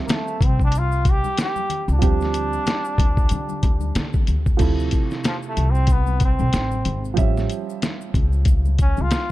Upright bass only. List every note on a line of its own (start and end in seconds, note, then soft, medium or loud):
0.41 1.20 C2 medium
1.88 2.00 C#2 medium
2.02 2.56 D2 loud
2.98 3.25 D2 loud
3.31 3.58 D3 medium
3.63 3.90 D2 loud
3.96 4.23 D3 loud
4.28 4.55 D2 medium
4.60 4.87 D2 loud
5.57 6.36 C2 medium
6.40 6.51 B1 medium
6.53 6.81 A1 medium
6.86 7.13 G#1 medium
7.18 7.45 A1 loud
8.14 8.94 C#2 medium
8.98 9.10 C#2 medium